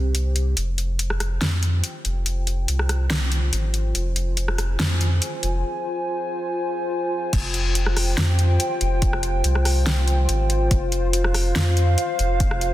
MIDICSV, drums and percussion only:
0, 0, Header, 1, 2, 480
1, 0, Start_track
1, 0, Key_signature, -4, "minor"
1, 0, Tempo, 422535
1, 648, Time_signature, 4, 2, 24, 8
1, 14468, End_track
2, 0, Start_track
2, 0, Title_t, "Drums"
2, 167, Note_on_c, 9, 42, 79
2, 280, Note_off_c, 9, 42, 0
2, 406, Note_on_c, 9, 42, 49
2, 519, Note_off_c, 9, 42, 0
2, 646, Note_on_c, 9, 42, 80
2, 759, Note_off_c, 9, 42, 0
2, 887, Note_on_c, 9, 42, 51
2, 1000, Note_off_c, 9, 42, 0
2, 1127, Note_on_c, 9, 42, 80
2, 1241, Note_off_c, 9, 42, 0
2, 1253, Note_on_c, 9, 37, 52
2, 1366, Note_off_c, 9, 37, 0
2, 1367, Note_on_c, 9, 37, 54
2, 1367, Note_on_c, 9, 42, 55
2, 1480, Note_off_c, 9, 37, 0
2, 1480, Note_off_c, 9, 42, 0
2, 1607, Note_on_c, 9, 38, 112
2, 1607, Note_on_c, 9, 42, 80
2, 1721, Note_off_c, 9, 38, 0
2, 1721, Note_off_c, 9, 42, 0
2, 1847, Note_on_c, 9, 42, 52
2, 1961, Note_off_c, 9, 42, 0
2, 2085, Note_on_c, 9, 42, 82
2, 2199, Note_off_c, 9, 42, 0
2, 2327, Note_on_c, 9, 42, 51
2, 2441, Note_off_c, 9, 42, 0
2, 2567, Note_on_c, 9, 42, 83
2, 2680, Note_off_c, 9, 42, 0
2, 2807, Note_on_c, 9, 42, 52
2, 2920, Note_off_c, 9, 42, 0
2, 3047, Note_on_c, 9, 42, 83
2, 3161, Note_off_c, 9, 42, 0
2, 3174, Note_on_c, 9, 37, 49
2, 3287, Note_off_c, 9, 37, 0
2, 3287, Note_on_c, 9, 37, 53
2, 3287, Note_on_c, 9, 42, 55
2, 3400, Note_off_c, 9, 37, 0
2, 3400, Note_off_c, 9, 42, 0
2, 3526, Note_on_c, 9, 38, 123
2, 3526, Note_on_c, 9, 42, 82
2, 3640, Note_off_c, 9, 38, 0
2, 3640, Note_off_c, 9, 42, 0
2, 3767, Note_on_c, 9, 42, 55
2, 3881, Note_off_c, 9, 42, 0
2, 4007, Note_on_c, 9, 42, 85
2, 4121, Note_off_c, 9, 42, 0
2, 4247, Note_on_c, 9, 42, 52
2, 4360, Note_off_c, 9, 42, 0
2, 4486, Note_on_c, 9, 42, 80
2, 4600, Note_off_c, 9, 42, 0
2, 4726, Note_on_c, 9, 42, 55
2, 4839, Note_off_c, 9, 42, 0
2, 4965, Note_on_c, 9, 42, 82
2, 5079, Note_off_c, 9, 42, 0
2, 5092, Note_on_c, 9, 37, 51
2, 5206, Note_off_c, 9, 37, 0
2, 5208, Note_on_c, 9, 37, 51
2, 5208, Note_on_c, 9, 42, 54
2, 5321, Note_off_c, 9, 37, 0
2, 5321, Note_off_c, 9, 42, 0
2, 5448, Note_on_c, 9, 38, 127
2, 5448, Note_on_c, 9, 42, 82
2, 5562, Note_off_c, 9, 38, 0
2, 5562, Note_off_c, 9, 42, 0
2, 5689, Note_on_c, 9, 42, 55
2, 5802, Note_off_c, 9, 42, 0
2, 5928, Note_on_c, 9, 42, 84
2, 6041, Note_off_c, 9, 42, 0
2, 6168, Note_on_c, 9, 42, 53
2, 6282, Note_off_c, 9, 42, 0
2, 8327, Note_on_c, 9, 36, 117
2, 8327, Note_on_c, 9, 42, 84
2, 8327, Note_on_c, 9, 49, 107
2, 8440, Note_off_c, 9, 42, 0
2, 8440, Note_off_c, 9, 49, 0
2, 8441, Note_off_c, 9, 36, 0
2, 8566, Note_on_c, 9, 42, 58
2, 8680, Note_off_c, 9, 42, 0
2, 8807, Note_on_c, 9, 42, 82
2, 8920, Note_off_c, 9, 42, 0
2, 8935, Note_on_c, 9, 37, 54
2, 9048, Note_off_c, 9, 37, 0
2, 9049, Note_on_c, 9, 37, 54
2, 9049, Note_on_c, 9, 46, 104
2, 9162, Note_off_c, 9, 37, 0
2, 9162, Note_off_c, 9, 46, 0
2, 9288, Note_on_c, 9, 38, 123
2, 9288, Note_on_c, 9, 42, 82
2, 9401, Note_off_c, 9, 38, 0
2, 9401, Note_off_c, 9, 42, 0
2, 9528, Note_on_c, 9, 42, 55
2, 9642, Note_off_c, 9, 42, 0
2, 9768, Note_on_c, 9, 42, 89
2, 9881, Note_off_c, 9, 42, 0
2, 10008, Note_on_c, 9, 42, 52
2, 10121, Note_off_c, 9, 42, 0
2, 10247, Note_on_c, 9, 42, 84
2, 10248, Note_on_c, 9, 36, 125
2, 10360, Note_off_c, 9, 42, 0
2, 10362, Note_off_c, 9, 36, 0
2, 10374, Note_on_c, 9, 37, 62
2, 10486, Note_on_c, 9, 42, 57
2, 10488, Note_off_c, 9, 37, 0
2, 10599, Note_off_c, 9, 42, 0
2, 10726, Note_on_c, 9, 42, 84
2, 10840, Note_off_c, 9, 42, 0
2, 10854, Note_on_c, 9, 37, 54
2, 10966, Note_off_c, 9, 37, 0
2, 10966, Note_on_c, 9, 37, 53
2, 10966, Note_on_c, 9, 46, 99
2, 11080, Note_off_c, 9, 37, 0
2, 11080, Note_off_c, 9, 46, 0
2, 11206, Note_on_c, 9, 38, 123
2, 11206, Note_on_c, 9, 42, 83
2, 11320, Note_off_c, 9, 38, 0
2, 11320, Note_off_c, 9, 42, 0
2, 11446, Note_on_c, 9, 42, 56
2, 11559, Note_off_c, 9, 42, 0
2, 11687, Note_on_c, 9, 42, 88
2, 11801, Note_off_c, 9, 42, 0
2, 11926, Note_on_c, 9, 42, 55
2, 12039, Note_off_c, 9, 42, 0
2, 12166, Note_on_c, 9, 42, 79
2, 12167, Note_on_c, 9, 36, 127
2, 12280, Note_off_c, 9, 42, 0
2, 12281, Note_off_c, 9, 36, 0
2, 12406, Note_on_c, 9, 42, 54
2, 12520, Note_off_c, 9, 42, 0
2, 12648, Note_on_c, 9, 42, 84
2, 12761, Note_off_c, 9, 42, 0
2, 12774, Note_on_c, 9, 37, 51
2, 12887, Note_off_c, 9, 37, 0
2, 12887, Note_on_c, 9, 37, 54
2, 12887, Note_on_c, 9, 46, 93
2, 13001, Note_off_c, 9, 37, 0
2, 13001, Note_off_c, 9, 46, 0
2, 13128, Note_on_c, 9, 38, 127
2, 13128, Note_on_c, 9, 42, 86
2, 13241, Note_off_c, 9, 38, 0
2, 13241, Note_off_c, 9, 42, 0
2, 13369, Note_on_c, 9, 42, 55
2, 13482, Note_off_c, 9, 42, 0
2, 13607, Note_on_c, 9, 42, 85
2, 13721, Note_off_c, 9, 42, 0
2, 13849, Note_on_c, 9, 42, 54
2, 13962, Note_off_c, 9, 42, 0
2, 14087, Note_on_c, 9, 42, 79
2, 14089, Note_on_c, 9, 36, 127
2, 14201, Note_off_c, 9, 42, 0
2, 14203, Note_off_c, 9, 36, 0
2, 14213, Note_on_c, 9, 37, 60
2, 14327, Note_off_c, 9, 37, 0
2, 14329, Note_on_c, 9, 42, 52
2, 14442, Note_off_c, 9, 42, 0
2, 14468, End_track
0, 0, End_of_file